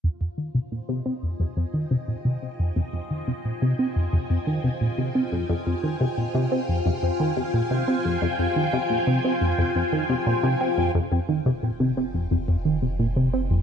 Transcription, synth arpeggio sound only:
\new Staff \with { instrumentName = "Synth arpeggio sound" } { \clef bass \time 4/4 \key f \minor \tempo 4 = 88 f,16 f,16 ees16 c16 bes,16 c16 c'16 f,16 f,16 f,16 ees16 c16 bes,16 c16 c'16 f,16 | f,16 f,16 ees16 c16 bes,16 c16 c'16 f,16 f,16 f,16 ees16 c16 bes,16 c16 c'16 f,16 | f,16 f,16 ees16 c16 bes,16 c16 c'16 f,16 f,16 f,16 ees16 c16 bes,16 c16 c'16 f,16 | f,16 f,16 ees16 c16 bes,16 c16 c'16 f,16 f,16 f,16 ees16 c16 bes,16 c16 c'16 f,16 |
f,16 f,16 ees16 c16 bes,16 c16 c'16 f,16 f,16 f,16 ees16 c16 bes,16 c16 c'16 f,16 | }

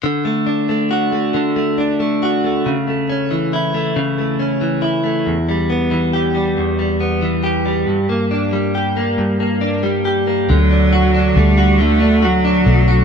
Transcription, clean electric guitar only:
\new Staff \with { instrumentName = "Clean electric guitar" } { \time 6/8 \key d \major \tempo 4. = 46 d16 a16 d'16 a16 fis'16 a16 d16 a16 d'16 a16 fis'16 a16 | cis16 a16 cis'16 e16 e'16 a16 cis16 a16 cis'16 e16 e'16 a16 | e,16 g16 b16 e16 g'16 g16 e,16 g16 b16 e16 g'16 g16 | g,16 bes16 d'16 g16 g'16 bes16 g,16 bes16 d'16 g16 g'16 bes16 |
d16 d'16 fis'16 d'16 a16 fis'16 d16 d'16 fis'16 d'16 a16 fis'16 | }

